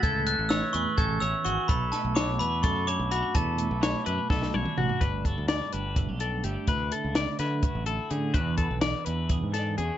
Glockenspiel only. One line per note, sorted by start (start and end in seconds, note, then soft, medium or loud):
0.03 0.27 G#6 medium
0.27 0.49 F#6 medium
0.49 0.72 E6 medium
0.73 0.84 C#6 loud
0.98 1.22 G#6 medium
1.20 1.45 E6 medium
1.45 1.67 C#6 medium
1.68 1.93 B5 medium
1.92 2.17 A5 medium
2.15 2.40 D6 medium
2.39 2.62 B5 medium
2.63 2.85 C#6 medium
2.87 3.09 D6 medium
3.11 3.36 B5 medium
3.35 4.50 A5 medium